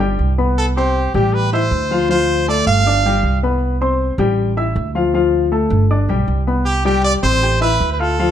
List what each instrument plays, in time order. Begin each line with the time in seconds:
Already playing: upright bass G1
0.00 upright piano G3 G4 G5
0.19 upright bass C2
0.38 upright piano B3 B4 B5
0.58 trumpet A4
0.77 upright piano C4 C5 C6, trumpet G4
1.14 upright bass A1, upright piano G3 G4 G5, trumpet G4
1.34 trumpet B4
1.53 upright piano E4 E5 E6, trumpet C5
1.71 upright bass D2
1.91 upright piano F3 F4 F5
2.09 upright piano F3 F4 F5, trumpet C5
2.48 upright piano A3 A4 A5, trumpet D5
2.67 upright bass G1, trumpet F5
2.86 upright piano D4 D5 D6
3.06 upright piano G3 G4 G5
3.23 upright bass C2
3.43 upright piano B3 B4 B5
3.81 upright piano C4 C5 C6
4.18 upright bass A1, upright piano G3 G4 G5
4.57 upright piano E4 E5 E6
4.76 upright bass D2
4.95 upright piano F3 F4 F5
5.14 upright piano F3 F4 F5
5.52 upright piano A3 A4 A5
5.70 upright bass G1
5.91 upright piano D4 D5 D6
6.09 upright bass B1, upright piano G3 G4 G5
6.28 upright bass C2
6.47 upright piano B3 B4 B5
6.65 trumpet G4
6.85 upright piano G3 G4 G5, trumpet G4
7.04 trumpet D5
7.23 upright bass A1, upright piano C4 C5 C6, trumpet C5
7.42 upright piano G4 G5 G6
7.61 upright piano E4 E5 E6, trumpet B4
7.80 upright bass D2
7.92 trumpet B4
8.00 upright piano F4 F5 F6, trumpet A4
8.19 upright piano F3 F4 F5